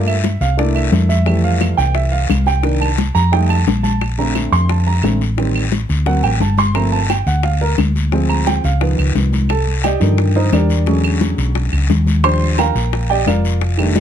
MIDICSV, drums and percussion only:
0, 0, Header, 1, 2, 480
1, 0, Start_track
1, 0, Key_signature, -1, "major"
1, 0, Tempo, 342661
1, 1789, Time_signature, 4, 2, 24, 8
1, 5623, Key_signature, -2, "major"
1, 19613, End_track
2, 0, Start_track
2, 0, Title_t, "Drums"
2, 99, Note_on_c, 9, 63, 39
2, 107, Note_on_c, 9, 75, 68
2, 240, Note_off_c, 9, 63, 0
2, 247, Note_off_c, 9, 75, 0
2, 337, Note_on_c, 9, 63, 92
2, 338, Note_on_c, 9, 60, 58
2, 339, Note_on_c, 9, 73, 65
2, 477, Note_off_c, 9, 63, 0
2, 478, Note_off_c, 9, 60, 0
2, 479, Note_off_c, 9, 73, 0
2, 577, Note_on_c, 9, 73, 68
2, 579, Note_on_c, 9, 60, 34
2, 581, Note_on_c, 9, 63, 30
2, 717, Note_off_c, 9, 73, 0
2, 719, Note_off_c, 9, 60, 0
2, 721, Note_off_c, 9, 63, 0
2, 820, Note_on_c, 9, 63, 34
2, 821, Note_on_c, 9, 74, 68
2, 825, Note_on_c, 9, 60, 66
2, 960, Note_off_c, 9, 63, 0
2, 961, Note_off_c, 9, 74, 0
2, 966, Note_off_c, 9, 60, 0
2, 1061, Note_on_c, 9, 60, 35
2, 1062, Note_on_c, 9, 63, 36
2, 1063, Note_on_c, 9, 75, 59
2, 1201, Note_off_c, 9, 60, 0
2, 1202, Note_off_c, 9, 63, 0
2, 1203, Note_off_c, 9, 75, 0
2, 1293, Note_on_c, 9, 63, 84
2, 1294, Note_on_c, 9, 60, 32
2, 1294, Note_on_c, 9, 61, 82
2, 1310, Note_on_c, 9, 73, 68
2, 1433, Note_off_c, 9, 63, 0
2, 1434, Note_off_c, 9, 60, 0
2, 1434, Note_off_c, 9, 61, 0
2, 1450, Note_off_c, 9, 73, 0
2, 1531, Note_on_c, 9, 63, 83
2, 1534, Note_on_c, 9, 60, 33
2, 1540, Note_on_c, 9, 73, 78
2, 1671, Note_off_c, 9, 63, 0
2, 1674, Note_off_c, 9, 60, 0
2, 1681, Note_off_c, 9, 73, 0
2, 1768, Note_on_c, 9, 60, 58
2, 1773, Note_on_c, 9, 63, 36
2, 1776, Note_on_c, 9, 74, 66
2, 1785, Note_on_c, 9, 75, 62
2, 1908, Note_off_c, 9, 60, 0
2, 1913, Note_off_c, 9, 63, 0
2, 1916, Note_off_c, 9, 74, 0
2, 1925, Note_off_c, 9, 75, 0
2, 2020, Note_on_c, 9, 63, 36
2, 2160, Note_off_c, 9, 63, 0
2, 2252, Note_on_c, 9, 60, 52
2, 2256, Note_on_c, 9, 73, 68
2, 2260, Note_on_c, 9, 75, 67
2, 2262, Note_on_c, 9, 63, 61
2, 2392, Note_off_c, 9, 60, 0
2, 2396, Note_off_c, 9, 73, 0
2, 2400, Note_off_c, 9, 75, 0
2, 2402, Note_off_c, 9, 63, 0
2, 2493, Note_on_c, 9, 60, 35
2, 2498, Note_on_c, 9, 73, 73
2, 2505, Note_on_c, 9, 63, 33
2, 2633, Note_off_c, 9, 60, 0
2, 2639, Note_off_c, 9, 73, 0
2, 2645, Note_off_c, 9, 63, 0
2, 2726, Note_on_c, 9, 60, 67
2, 2742, Note_on_c, 9, 74, 71
2, 2745, Note_on_c, 9, 63, 35
2, 2866, Note_off_c, 9, 60, 0
2, 2883, Note_off_c, 9, 74, 0
2, 2885, Note_off_c, 9, 63, 0
2, 2973, Note_on_c, 9, 60, 37
2, 2984, Note_on_c, 9, 63, 36
2, 3113, Note_off_c, 9, 60, 0
2, 3124, Note_off_c, 9, 63, 0
2, 3216, Note_on_c, 9, 60, 33
2, 3216, Note_on_c, 9, 61, 75
2, 3218, Note_on_c, 9, 73, 71
2, 3228, Note_on_c, 9, 63, 80
2, 3229, Note_on_c, 9, 75, 68
2, 3356, Note_off_c, 9, 60, 0
2, 3356, Note_off_c, 9, 61, 0
2, 3359, Note_off_c, 9, 73, 0
2, 3368, Note_off_c, 9, 63, 0
2, 3369, Note_off_c, 9, 75, 0
2, 3448, Note_on_c, 9, 60, 33
2, 3467, Note_on_c, 9, 73, 70
2, 3588, Note_off_c, 9, 60, 0
2, 3607, Note_off_c, 9, 73, 0
2, 3691, Note_on_c, 9, 60, 67
2, 3704, Note_on_c, 9, 74, 73
2, 3707, Note_on_c, 9, 63, 35
2, 3831, Note_off_c, 9, 60, 0
2, 3844, Note_off_c, 9, 74, 0
2, 3847, Note_off_c, 9, 63, 0
2, 3944, Note_on_c, 9, 63, 37
2, 3951, Note_on_c, 9, 75, 68
2, 4084, Note_off_c, 9, 63, 0
2, 4091, Note_off_c, 9, 75, 0
2, 4178, Note_on_c, 9, 60, 58
2, 4183, Note_on_c, 9, 63, 94
2, 4184, Note_on_c, 9, 73, 68
2, 4319, Note_off_c, 9, 60, 0
2, 4323, Note_off_c, 9, 63, 0
2, 4324, Note_off_c, 9, 73, 0
2, 4419, Note_on_c, 9, 73, 73
2, 4420, Note_on_c, 9, 63, 34
2, 4426, Note_on_c, 9, 60, 36
2, 4559, Note_off_c, 9, 73, 0
2, 4560, Note_off_c, 9, 63, 0
2, 4566, Note_off_c, 9, 60, 0
2, 4664, Note_on_c, 9, 60, 66
2, 4665, Note_on_c, 9, 74, 67
2, 4670, Note_on_c, 9, 63, 37
2, 4804, Note_off_c, 9, 60, 0
2, 4805, Note_off_c, 9, 74, 0
2, 4810, Note_off_c, 9, 63, 0
2, 4905, Note_on_c, 9, 60, 36
2, 4905, Note_on_c, 9, 75, 67
2, 4906, Note_on_c, 9, 63, 36
2, 5045, Note_off_c, 9, 60, 0
2, 5046, Note_off_c, 9, 63, 0
2, 5046, Note_off_c, 9, 75, 0
2, 5139, Note_on_c, 9, 73, 68
2, 5146, Note_on_c, 9, 63, 80
2, 5149, Note_on_c, 9, 60, 32
2, 5149, Note_on_c, 9, 61, 83
2, 5279, Note_off_c, 9, 73, 0
2, 5286, Note_off_c, 9, 63, 0
2, 5289, Note_off_c, 9, 60, 0
2, 5289, Note_off_c, 9, 61, 0
2, 5377, Note_on_c, 9, 63, 84
2, 5381, Note_on_c, 9, 73, 66
2, 5390, Note_on_c, 9, 60, 35
2, 5517, Note_off_c, 9, 63, 0
2, 5521, Note_off_c, 9, 73, 0
2, 5530, Note_off_c, 9, 60, 0
2, 5621, Note_on_c, 9, 75, 58
2, 5623, Note_on_c, 9, 60, 57
2, 5625, Note_on_c, 9, 74, 69
2, 5761, Note_off_c, 9, 75, 0
2, 5763, Note_off_c, 9, 60, 0
2, 5765, Note_off_c, 9, 74, 0
2, 5864, Note_on_c, 9, 63, 34
2, 6004, Note_off_c, 9, 63, 0
2, 6097, Note_on_c, 9, 73, 75
2, 6097, Note_on_c, 9, 75, 63
2, 6098, Note_on_c, 9, 60, 50
2, 6106, Note_on_c, 9, 63, 60
2, 6237, Note_off_c, 9, 73, 0
2, 6237, Note_off_c, 9, 75, 0
2, 6238, Note_off_c, 9, 60, 0
2, 6246, Note_off_c, 9, 63, 0
2, 6338, Note_on_c, 9, 63, 32
2, 6339, Note_on_c, 9, 60, 36
2, 6342, Note_on_c, 9, 73, 75
2, 6478, Note_off_c, 9, 63, 0
2, 6480, Note_off_c, 9, 60, 0
2, 6482, Note_off_c, 9, 73, 0
2, 6576, Note_on_c, 9, 60, 68
2, 6581, Note_on_c, 9, 63, 35
2, 6589, Note_on_c, 9, 74, 70
2, 6716, Note_off_c, 9, 60, 0
2, 6721, Note_off_c, 9, 63, 0
2, 6729, Note_off_c, 9, 74, 0
2, 6818, Note_on_c, 9, 60, 34
2, 6819, Note_on_c, 9, 63, 35
2, 6958, Note_off_c, 9, 60, 0
2, 6959, Note_off_c, 9, 63, 0
2, 7045, Note_on_c, 9, 75, 61
2, 7052, Note_on_c, 9, 63, 78
2, 7058, Note_on_c, 9, 60, 31
2, 7058, Note_on_c, 9, 61, 77
2, 7068, Note_on_c, 9, 73, 66
2, 7185, Note_off_c, 9, 75, 0
2, 7193, Note_off_c, 9, 63, 0
2, 7199, Note_off_c, 9, 60, 0
2, 7199, Note_off_c, 9, 61, 0
2, 7208, Note_off_c, 9, 73, 0
2, 7303, Note_on_c, 9, 73, 64
2, 7304, Note_on_c, 9, 60, 36
2, 7443, Note_off_c, 9, 73, 0
2, 7444, Note_off_c, 9, 60, 0
2, 7532, Note_on_c, 9, 63, 35
2, 7535, Note_on_c, 9, 74, 70
2, 7537, Note_on_c, 9, 60, 58
2, 7672, Note_off_c, 9, 63, 0
2, 7676, Note_off_c, 9, 74, 0
2, 7677, Note_off_c, 9, 60, 0
2, 7774, Note_on_c, 9, 63, 34
2, 7783, Note_on_c, 9, 75, 71
2, 7914, Note_off_c, 9, 63, 0
2, 7923, Note_off_c, 9, 75, 0
2, 8011, Note_on_c, 9, 63, 85
2, 8015, Note_on_c, 9, 60, 50
2, 8021, Note_on_c, 9, 73, 67
2, 8151, Note_off_c, 9, 63, 0
2, 8155, Note_off_c, 9, 60, 0
2, 8161, Note_off_c, 9, 73, 0
2, 8254, Note_on_c, 9, 60, 33
2, 8258, Note_on_c, 9, 63, 34
2, 8266, Note_on_c, 9, 73, 68
2, 8394, Note_off_c, 9, 60, 0
2, 8398, Note_off_c, 9, 63, 0
2, 8406, Note_off_c, 9, 73, 0
2, 8492, Note_on_c, 9, 60, 70
2, 8500, Note_on_c, 9, 63, 31
2, 8501, Note_on_c, 9, 74, 68
2, 8632, Note_off_c, 9, 60, 0
2, 8640, Note_off_c, 9, 63, 0
2, 8641, Note_off_c, 9, 74, 0
2, 8732, Note_on_c, 9, 60, 36
2, 8739, Note_on_c, 9, 63, 33
2, 8739, Note_on_c, 9, 75, 60
2, 8872, Note_off_c, 9, 60, 0
2, 8879, Note_off_c, 9, 63, 0
2, 8879, Note_off_c, 9, 75, 0
2, 8967, Note_on_c, 9, 63, 76
2, 8971, Note_on_c, 9, 60, 33
2, 8971, Note_on_c, 9, 61, 77
2, 8977, Note_on_c, 9, 73, 67
2, 9107, Note_off_c, 9, 63, 0
2, 9111, Note_off_c, 9, 60, 0
2, 9111, Note_off_c, 9, 61, 0
2, 9117, Note_off_c, 9, 73, 0
2, 9211, Note_on_c, 9, 60, 35
2, 9212, Note_on_c, 9, 63, 83
2, 9222, Note_on_c, 9, 73, 73
2, 9351, Note_off_c, 9, 60, 0
2, 9352, Note_off_c, 9, 63, 0
2, 9363, Note_off_c, 9, 73, 0
2, 9454, Note_on_c, 9, 60, 58
2, 9456, Note_on_c, 9, 74, 74
2, 9464, Note_on_c, 9, 75, 61
2, 9595, Note_off_c, 9, 60, 0
2, 9596, Note_off_c, 9, 74, 0
2, 9604, Note_off_c, 9, 75, 0
2, 9693, Note_on_c, 9, 63, 34
2, 9833, Note_off_c, 9, 63, 0
2, 9934, Note_on_c, 9, 63, 58
2, 9943, Note_on_c, 9, 60, 55
2, 9944, Note_on_c, 9, 75, 65
2, 9946, Note_on_c, 9, 73, 71
2, 10075, Note_off_c, 9, 63, 0
2, 10083, Note_off_c, 9, 60, 0
2, 10084, Note_off_c, 9, 75, 0
2, 10086, Note_off_c, 9, 73, 0
2, 10175, Note_on_c, 9, 63, 30
2, 10180, Note_on_c, 9, 60, 31
2, 10182, Note_on_c, 9, 73, 69
2, 10315, Note_off_c, 9, 63, 0
2, 10320, Note_off_c, 9, 60, 0
2, 10322, Note_off_c, 9, 73, 0
2, 10413, Note_on_c, 9, 60, 66
2, 10420, Note_on_c, 9, 74, 72
2, 10422, Note_on_c, 9, 63, 36
2, 10553, Note_off_c, 9, 60, 0
2, 10560, Note_off_c, 9, 74, 0
2, 10562, Note_off_c, 9, 63, 0
2, 10659, Note_on_c, 9, 60, 35
2, 10663, Note_on_c, 9, 63, 36
2, 10799, Note_off_c, 9, 60, 0
2, 10803, Note_off_c, 9, 63, 0
2, 10899, Note_on_c, 9, 60, 30
2, 10899, Note_on_c, 9, 61, 78
2, 10901, Note_on_c, 9, 73, 64
2, 10903, Note_on_c, 9, 63, 82
2, 10904, Note_on_c, 9, 75, 63
2, 11039, Note_off_c, 9, 60, 0
2, 11039, Note_off_c, 9, 61, 0
2, 11042, Note_off_c, 9, 73, 0
2, 11043, Note_off_c, 9, 63, 0
2, 11044, Note_off_c, 9, 75, 0
2, 11143, Note_on_c, 9, 60, 35
2, 11151, Note_on_c, 9, 73, 70
2, 11283, Note_off_c, 9, 60, 0
2, 11291, Note_off_c, 9, 73, 0
2, 11378, Note_on_c, 9, 60, 62
2, 11382, Note_on_c, 9, 63, 37
2, 11392, Note_on_c, 9, 74, 73
2, 11519, Note_off_c, 9, 60, 0
2, 11522, Note_off_c, 9, 63, 0
2, 11533, Note_off_c, 9, 74, 0
2, 11621, Note_on_c, 9, 75, 64
2, 11634, Note_on_c, 9, 63, 36
2, 11761, Note_off_c, 9, 75, 0
2, 11774, Note_off_c, 9, 63, 0
2, 11864, Note_on_c, 9, 73, 70
2, 11868, Note_on_c, 9, 60, 54
2, 11868, Note_on_c, 9, 63, 94
2, 12004, Note_off_c, 9, 73, 0
2, 12008, Note_off_c, 9, 60, 0
2, 12008, Note_off_c, 9, 63, 0
2, 12101, Note_on_c, 9, 60, 33
2, 12110, Note_on_c, 9, 73, 69
2, 12116, Note_on_c, 9, 63, 31
2, 12241, Note_off_c, 9, 60, 0
2, 12250, Note_off_c, 9, 73, 0
2, 12256, Note_off_c, 9, 63, 0
2, 12342, Note_on_c, 9, 74, 67
2, 12344, Note_on_c, 9, 60, 70
2, 12350, Note_on_c, 9, 63, 31
2, 12482, Note_off_c, 9, 74, 0
2, 12484, Note_off_c, 9, 60, 0
2, 12490, Note_off_c, 9, 63, 0
2, 12581, Note_on_c, 9, 60, 32
2, 12594, Note_on_c, 9, 75, 61
2, 12598, Note_on_c, 9, 63, 39
2, 12722, Note_off_c, 9, 60, 0
2, 12734, Note_off_c, 9, 75, 0
2, 12738, Note_off_c, 9, 63, 0
2, 12823, Note_on_c, 9, 60, 31
2, 12823, Note_on_c, 9, 61, 70
2, 12829, Note_on_c, 9, 73, 67
2, 12834, Note_on_c, 9, 63, 83
2, 12963, Note_off_c, 9, 60, 0
2, 12963, Note_off_c, 9, 61, 0
2, 12969, Note_off_c, 9, 73, 0
2, 12974, Note_off_c, 9, 63, 0
2, 13068, Note_on_c, 9, 60, 35
2, 13068, Note_on_c, 9, 63, 85
2, 13077, Note_on_c, 9, 73, 68
2, 13208, Note_off_c, 9, 60, 0
2, 13208, Note_off_c, 9, 63, 0
2, 13218, Note_off_c, 9, 73, 0
2, 13297, Note_on_c, 9, 75, 61
2, 13307, Note_on_c, 9, 60, 62
2, 13311, Note_on_c, 9, 74, 74
2, 13437, Note_off_c, 9, 75, 0
2, 13447, Note_off_c, 9, 60, 0
2, 13451, Note_off_c, 9, 74, 0
2, 13549, Note_on_c, 9, 63, 36
2, 13689, Note_off_c, 9, 63, 0
2, 13782, Note_on_c, 9, 75, 64
2, 13785, Note_on_c, 9, 73, 71
2, 13788, Note_on_c, 9, 60, 56
2, 13795, Note_on_c, 9, 63, 59
2, 13922, Note_off_c, 9, 75, 0
2, 13925, Note_off_c, 9, 73, 0
2, 13928, Note_off_c, 9, 60, 0
2, 13935, Note_off_c, 9, 63, 0
2, 14020, Note_on_c, 9, 73, 74
2, 14023, Note_on_c, 9, 60, 35
2, 14032, Note_on_c, 9, 63, 32
2, 14160, Note_off_c, 9, 73, 0
2, 14163, Note_off_c, 9, 60, 0
2, 14172, Note_off_c, 9, 63, 0
2, 14259, Note_on_c, 9, 74, 65
2, 14263, Note_on_c, 9, 60, 64
2, 14266, Note_on_c, 9, 63, 33
2, 14399, Note_off_c, 9, 74, 0
2, 14403, Note_off_c, 9, 60, 0
2, 14406, Note_off_c, 9, 63, 0
2, 14507, Note_on_c, 9, 60, 35
2, 14509, Note_on_c, 9, 63, 34
2, 14647, Note_off_c, 9, 60, 0
2, 14649, Note_off_c, 9, 63, 0
2, 14743, Note_on_c, 9, 73, 69
2, 14744, Note_on_c, 9, 63, 89
2, 14747, Note_on_c, 9, 60, 33
2, 14747, Note_on_c, 9, 61, 76
2, 14753, Note_on_c, 9, 75, 61
2, 14883, Note_off_c, 9, 73, 0
2, 14884, Note_off_c, 9, 63, 0
2, 14887, Note_off_c, 9, 60, 0
2, 14887, Note_off_c, 9, 61, 0
2, 14893, Note_off_c, 9, 75, 0
2, 14982, Note_on_c, 9, 60, 32
2, 14984, Note_on_c, 9, 63, 68
2, 14991, Note_on_c, 9, 73, 72
2, 15122, Note_off_c, 9, 60, 0
2, 15124, Note_off_c, 9, 63, 0
2, 15131, Note_off_c, 9, 73, 0
2, 15218, Note_on_c, 9, 74, 69
2, 15227, Note_on_c, 9, 60, 64
2, 15229, Note_on_c, 9, 63, 36
2, 15358, Note_off_c, 9, 74, 0
2, 15367, Note_off_c, 9, 60, 0
2, 15369, Note_off_c, 9, 63, 0
2, 15468, Note_on_c, 9, 75, 73
2, 15469, Note_on_c, 9, 63, 39
2, 15608, Note_off_c, 9, 75, 0
2, 15609, Note_off_c, 9, 63, 0
2, 15703, Note_on_c, 9, 60, 56
2, 15703, Note_on_c, 9, 63, 95
2, 15708, Note_on_c, 9, 73, 73
2, 15843, Note_off_c, 9, 60, 0
2, 15843, Note_off_c, 9, 63, 0
2, 15849, Note_off_c, 9, 73, 0
2, 15945, Note_on_c, 9, 73, 79
2, 15947, Note_on_c, 9, 60, 35
2, 15949, Note_on_c, 9, 63, 33
2, 16085, Note_off_c, 9, 73, 0
2, 16087, Note_off_c, 9, 60, 0
2, 16089, Note_off_c, 9, 63, 0
2, 16184, Note_on_c, 9, 60, 68
2, 16187, Note_on_c, 9, 63, 34
2, 16189, Note_on_c, 9, 74, 69
2, 16324, Note_off_c, 9, 60, 0
2, 16327, Note_off_c, 9, 63, 0
2, 16329, Note_off_c, 9, 74, 0
2, 16426, Note_on_c, 9, 60, 37
2, 16428, Note_on_c, 9, 75, 62
2, 16430, Note_on_c, 9, 63, 35
2, 16566, Note_off_c, 9, 60, 0
2, 16569, Note_off_c, 9, 75, 0
2, 16570, Note_off_c, 9, 63, 0
2, 16666, Note_on_c, 9, 60, 32
2, 16666, Note_on_c, 9, 61, 70
2, 16666, Note_on_c, 9, 73, 67
2, 16671, Note_on_c, 9, 63, 80
2, 16806, Note_off_c, 9, 60, 0
2, 16806, Note_off_c, 9, 61, 0
2, 16806, Note_off_c, 9, 73, 0
2, 16811, Note_off_c, 9, 63, 0
2, 16901, Note_on_c, 9, 63, 84
2, 16905, Note_on_c, 9, 60, 34
2, 16914, Note_on_c, 9, 73, 72
2, 17041, Note_off_c, 9, 63, 0
2, 17045, Note_off_c, 9, 60, 0
2, 17054, Note_off_c, 9, 73, 0
2, 17145, Note_on_c, 9, 60, 66
2, 17146, Note_on_c, 9, 75, 65
2, 17151, Note_on_c, 9, 74, 71
2, 17285, Note_off_c, 9, 60, 0
2, 17286, Note_off_c, 9, 75, 0
2, 17291, Note_off_c, 9, 74, 0
2, 17390, Note_on_c, 9, 63, 38
2, 17530, Note_off_c, 9, 63, 0
2, 17628, Note_on_c, 9, 63, 62
2, 17629, Note_on_c, 9, 60, 54
2, 17633, Note_on_c, 9, 75, 64
2, 17637, Note_on_c, 9, 73, 68
2, 17768, Note_off_c, 9, 63, 0
2, 17769, Note_off_c, 9, 60, 0
2, 17773, Note_off_c, 9, 75, 0
2, 17777, Note_off_c, 9, 73, 0
2, 17868, Note_on_c, 9, 63, 33
2, 17871, Note_on_c, 9, 73, 72
2, 17874, Note_on_c, 9, 60, 34
2, 18008, Note_off_c, 9, 63, 0
2, 18011, Note_off_c, 9, 73, 0
2, 18014, Note_off_c, 9, 60, 0
2, 18112, Note_on_c, 9, 63, 33
2, 18114, Note_on_c, 9, 60, 72
2, 18115, Note_on_c, 9, 74, 70
2, 18252, Note_off_c, 9, 63, 0
2, 18254, Note_off_c, 9, 60, 0
2, 18256, Note_off_c, 9, 74, 0
2, 18344, Note_on_c, 9, 63, 36
2, 18355, Note_on_c, 9, 60, 36
2, 18484, Note_off_c, 9, 63, 0
2, 18495, Note_off_c, 9, 60, 0
2, 18579, Note_on_c, 9, 63, 81
2, 18592, Note_on_c, 9, 60, 34
2, 18592, Note_on_c, 9, 61, 72
2, 18597, Note_on_c, 9, 73, 72
2, 18598, Note_on_c, 9, 75, 69
2, 18719, Note_off_c, 9, 63, 0
2, 18732, Note_off_c, 9, 60, 0
2, 18732, Note_off_c, 9, 61, 0
2, 18737, Note_off_c, 9, 73, 0
2, 18739, Note_off_c, 9, 75, 0
2, 18837, Note_on_c, 9, 60, 34
2, 18843, Note_on_c, 9, 73, 75
2, 18977, Note_off_c, 9, 60, 0
2, 18983, Note_off_c, 9, 73, 0
2, 19067, Note_on_c, 9, 63, 37
2, 19071, Note_on_c, 9, 60, 62
2, 19078, Note_on_c, 9, 74, 76
2, 19207, Note_off_c, 9, 63, 0
2, 19211, Note_off_c, 9, 60, 0
2, 19218, Note_off_c, 9, 74, 0
2, 19308, Note_on_c, 9, 63, 39
2, 19313, Note_on_c, 9, 75, 69
2, 19448, Note_off_c, 9, 63, 0
2, 19453, Note_off_c, 9, 75, 0
2, 19549, Note_on_c, 9, 63, 92
2, 19554, Note_on_c, 9, 73, 73
2, 19558, Note_on_c, 9, 60, 54
2, 19613, Note_off_c, 9, 60, 0
2, 19613, Note_off_c, 9, 63, 0
2, 19613, Note_off_c, 9, 73, 0
2, 19613, End_track
0, 0, End_of_file